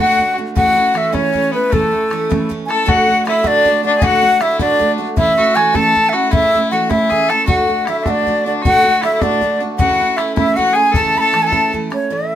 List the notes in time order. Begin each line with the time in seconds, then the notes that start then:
Already playing: F#4
0.00 D2 A2 D3 A3 D4 F#4 F#5
0.19 D3 A3 D4 F#4, bodhran
0.37 D3 A3 D4 F#4
0.55 C#3 E3 A3 C#4 E4 F#4 F#5, bodhran
0.67 bodhran
0.75 A3 C#4 E4
0.94 E3 A3 C#4 E4 E5, bodhran
1.12 C#3 E3 A3 C#4 E4 C#5, bodhran
1.33 E3 A3 C#4 E4, bodhran
1.51 A3 B3 C#4 E4 B4
1.70 C#3 E3 A3 C#4 E4 A4, bodhran
1.83 bodhran
1.92 A3 C#4 E4
2.10 E3 A3 C#4 E4, bodhran
2.29 C#3 E3 A3 C#4 E4, bodhran
2.49 E3 A3 C#4 E4, bodhran
2.66 E4 A4 G#5
2.70 A3 C#4 A5, bodhran
2.85 D2 A2 D3 A3 D4 F#4 F#5, bodhran
2.98 bodhran
3.07 D3 A3 D4 F#4
3.25 D3 A3 D4 E4 F#4 E5, bodhran
3.39 E4
3.43 D2 A2 D3 A3 D4 F#4, bodhran
3.47 D5
3.65 D3 A3 D4 F#4, bodhran
3.83 D3 A3 D4 F#4 D5
3.98 D2 A2 D3 A3 D4 G#4, bodhran
4.03 F#4 F#5
4.12 bodhran
4.23 D3 A3 D4 F#4
4.40 D3 A3 D4 E4 F#4 E5, bodhran
4.59 D2 A2 D3 A3 D4 F#4 D5, bodhran
4.79 D3 A3 D4 F#4, bodhran
4.98 D3 A3 D4 F#4
5.16 C#3 E3 A3 C#4 E4 E5, bodhran
5.28 bodhran
5.37 A3 C#4 E4 F#4
5.55 E3 A3 C#4 E4 G#5, bodhran
5.73 C#3 E3 A3 C#4 E4 A4 A5, bodhran
5.95 E3 A3 C#4, bodhran
6.09 E4 F#4 E5
6.14 A3 C#4 F#5
6.31 C#3 E3 A3 C#4 E4 E5, bodhran
6.43 bodhran
6.54 A3 C#4 E4
6.71 E3 A3 C#4 E4 F#4 F#5
6.89 C#3 E3 A3 C#4 E4 E5, bodhran
7.10 E3 A3 C#4 E4 G#4, bodhran
7.29 A3 C#4 E4 A4 A5, bodhran
7.46 D2 A2 D3 A3 D4 F#4 F#5, bodhran
7.58 bodhran
7.68 D3 A3 D4 F#4
7.85 D3 A3 D4 E4, bodhran
7.89 F#4 E5
8.00 D4 E5
8.06 D2 A2 D3 A3 D4 F#4, bodhran
8.10 D5
8.27 D3 A3 D4 F#4, bodhran
8.43 D4 F#4
8.47 D3 A3 D5
8.62 D2 A2 D3 A3 D4 F#4, bodhran
8.66 F#4 F#5
8.75 bodhran
8.84 D3 A3 D4 F#4
9.02 D3 A3 D4 E4 F#4 E5, bodhran
9.14 E4
9.20 D2 A2 D3 A3 D4 F#4 D5, bodhran
9.41 D3 A3 D4 F#4, bodhran
9.60 D3 A3 D4 F#4
9.78 C#3 E3 A3 C#4 E4 F#4 F#5, bodhran
9.90 bodhran
9.99 A3 C#4 E4
10.17 E3 A3 C#4 E4 E5, bodhran
10.35 C#3 E3 A3 C#4 E4 E5, bodhran
10.55 E3 A3 C#4 E4 F#4 F#5, bodhran
10.73 A3 C#4 E4 G#4 G#5
10.92 C#3 E3 A3 A4 A5, bodhran
10.96 C#4 E4
11.05 bodhran
11.15 A3 C#4 E4 B5
11.19 A4 A5
11.33 E3 A3 C#4 E4, bodhran
11.42 A4 G#5
11.47 A5
11.52 C#3 E3 A3 C#4 E4, bodhran
11.73 E3 A3 C#4 E4, bodhran
11.90 A3 C#4 E4 C#5, bodhran
12.10 A2 E3 A3 C#4 E4 E5